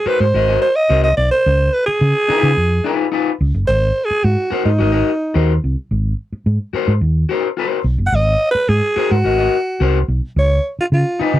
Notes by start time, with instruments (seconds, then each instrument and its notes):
0.06 clean electric guitar F#4 A#4 C5, alto saxophone B4, muted fingered electric bass stroke
0.20 fingered electric bass G#2, alto saxophone C5
0.34 fingered electric bass G#1, clean electric guitar F#4 A#4 D#5
0.48 clean electric guitar F#4 A#4 D#5
0.62 alto saxophone C5
0.76 alto saxophone D#5
0.89 fingered electric bass C2, clean electric guitar F#4 A#4 C5
1.04 alto saxophone D#5
1.17 fingered electric bass B1, alto saxophone D5
1.31 alto saxophone C5
1.46 fingered electric bass C#2
1.74 alto saxophone B4
1.86 alto saxophone G#4, muted fingered electric bass stroke
2.01 fingered electric bass C#3
2.28 clean electric guitar D#4 F4 B4, muted fingered electric bass stroke
2.43 fingered electric bass C#3
2.57 fingered electric bass F2
2.84 clean electric guitar D#4 F4 B4
3.12 clean electric guitar D#4 F4 B4
3.41 fingered electric bass C#2
3.54 fingered electric bass F#1
3.68 fingered electric bass G#1, alto saxophone C5
4.05 alto saxophone G#4
4.11 muted fingered electric bass stroke
4.24 fingered electric bass G#2, alto saxophone F#4
4.51 clean electric guitar F#4 A#4 C5, muted fingered electric bass stroke
4.65 fingered electric bass G#2, alto saxophone D#4
4.79 fingered electric bass G#1, clean electric guitar F#4 A#4 D#5
4.92 clean electric guitar F#4 A#4 D#5
5.34 fingered electric bass D#2, clean electric guitar F#4 A#4 C5
5.64 fingered electric bass C2
5.91 fingered electric bass G#1
6.32 muted fingered electric bass stroke
6.46 fingered electric bass G#2
6.73 clean electric guitar F#4 A#4 C5, muted fingered electric bass stroke
6.88 fingered electric bass G#2
7.01 fingered electric bass D#2
7.29 clean electric guitar F#4 A#4 C5
7.57 clean electric guitar F#4 A#4 C5
7.84 fingered electric bass B1
7.98 fingered electric bass F#1
8.06 alto saxophone F#5
8.12 fingered electric bass G#1, alto saxophone D#5
8.51 alto saxophone B4, muted fingered electric bass stroke
8.69 fingered electric bass G#2, alto saxophone G#4
8.96 clean electric guitar F#4 A#4 C5, muted fingered electric bass stroke
9.11 fingered electric bass G#2, alto saxophone F#4
9.24 fingered electric bass G#1, clean electric guitar F#4 A#4 D#5
9.38 clean electric guitar F#4 A#4 D#5
9.80 fingered electric bass C2, clean electric guitar F#4 A#4 C5
10.08 fingered electric bass B1
10.36 fingered electric bass C#2, alto saxophone C#5
10.79 alto saxophone F4, muted fingered electric bass stroke
10.92 fingered electric bass C#3, alto saxophone F4
11.19 clean electric guitar D#4 F4 B4, alto saxophone D#4, muted fingered electric bass stroke
11.34 fingered electric bass C#3